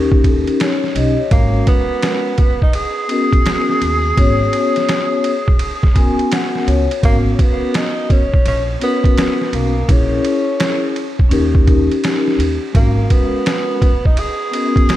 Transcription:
Already playing: upright bass D#2, vibraphone C#4 D#4 G4 A#4
0.12 kick
0.23 vibraphone C#4 D#4 G4 A4, kick, ride
0.33 vibraphone A#4
0.47 ride
0.60 vibraphone C#5, snare, hi-hat pedal, ride
0.84 snare
0.95 upright bass B1, vibraphone G4 D#5, ride
1.19 vibraphone C#5
1.30 upright bass G#1, vibraphone G#3 C#4 F#4 A#4, tenor saxophone A#3, kick, ride
1.67 tenor saxophone B3, kick, ride
2.02 snare, hi-hat pedal, ride
2.38 kick, ride
2.62 tenor saxophone D#4, kick
2.73 tenor saxophone G#4, ride
3.08 vibraphone B3 C#4 F#4 A#4, ride
3.33 kick, ride
3.46 snare, hi-hat pedal, ride
3.69 snare
3.82 upright bass D#2, ride
4.15 upright bass G#1, vibraphone B3 C#4 F#4 C#5, kick, ride
4.53 ride
4.76 snare, ride
4.89 snare, hi-hat pedal, ride
5.24 ride
5.48 kick
5.59 ride
5.83 kick, snare
5.94 vibraphone B3 C#4 F#4 A#4 G#5, kick, ride
6.19 ride
6.32 vibraphone F#5, snare, hi-hat pedal, ride
6.55 snare
6.67 upright bass C#2, vibraphone C#5, ride
6.91 ride
7.01 upright bass G#1, tenor saxophone A#3, vibraphone B3 C#4 F#4 A#4, kick, ride
7.34 tenor saxophone C#4
7.39 tenor saxophone B3, kick, ride
7.74 tenor saxophone D#4, snare, hi-hat pedal, ride
8.10 tenor saxophone C#4, kick, ride
8.34 kick
8.46 upright bass A#1, tenor saxophone C#4, ride
8.79 vibraphone B3 C#4 F#4 A#4, ride
8.83 tenor saxophone B3
9.04 kick, ride
9.18 snare, hi-hat pedal, ride
9.41 snare
9.53 upright bass B1, tenor saxophone A#3, ride
9.86 upright bass A#1, vibraphone C#4 E4 G#4 A#4, kick, ride
9.91 tenor saxophone C#4
10.25 ride
10.60 snare, hi-hat pedal, ride
10.96 ride
11.19 kick
11.29 upright bass D#2, vibraphone C#4 D#4 G4 A#4, ride
11.55 kick
11.66 vibraphone C#4 D#4 G4 A#4, kick, ride
11.91 ride
12.04 snare, hi-hat pedal, ride
12.27 snare
12.38 upright bass D#2, ride
12.73 upright bass G#1, vibraphone G#3 C#4 F#4 A#4, tenor saxophone A#3, kick, ride
13.10 tenor saxophone B3, kick, ride
13.46 snare, hi-hat pedal, ride
13.82 kick, ride
14.05 tenor saxophone D#4, kick
14.17 tenor saxophone G#4, ride
14.51 vibraphone B3 C#4 F#4 A#4, ride
14.76 kick, ride
14.89 snare, hi-hat pedal, ride

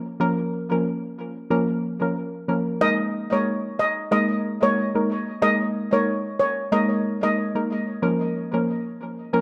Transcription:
0.20 synth pluck F3 A#3 C#4 A#4
0.71 synth pluck F3 A#3 C#4 A#4
1.50 synth pluck F3 A#3 C#4 A#4
2.01 synth pluck F3 A#3 C#4 A#4
2.48 synth pluck F3 A#3 C#4 A#4
2.81 synth pluck G#3 A#3 D#4 A#4, steel pan D#5
3.32 synth pluck G#3 A#3 D#4 A#4, steel pan C#5
3.79 steel pan D#5
4.11 synth pluck G#3 A#3 D#4 A#4, steel pan D#5
4.62 synth pluck G#3 A#3 D#4 A#4, steel pan C#5
4.95 synth pluck G#3 A#3 D#4 A#4
5.42 synth pluck G#3 A#3 D#4 A#4, steel pan D#5
5.92 synth pluck G#3 A#3 D#4 A#4, steel pan C#5
6.40 steel pan C#5
6.72 synth pluck G#3 A#3 D#4 A#4, steel pan D#5
7.23 synth pluck G#3 A#3 D#4 A#4, steel pan D#5
7.55 synth pluck G#3 A#3 D#4 A#4
8.02 synth pluck F3 A#3 C#4 A#4
8.53 synth pluck F3 A#3 C#4 A#4
9.33 synth pluck F3 A#3 C#4 A#4

